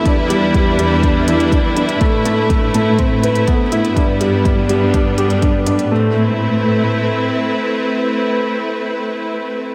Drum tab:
HH |x-x-x-x-x-xxx-xx|x-x-x-x-x-xxx-xx|x-x-x-x-x-xxx-xx|----------------|
BD |o---o---o---o---|o---o---o---o---|o---o---o---o---|----------------|

HH |----------------|
BD |----------------|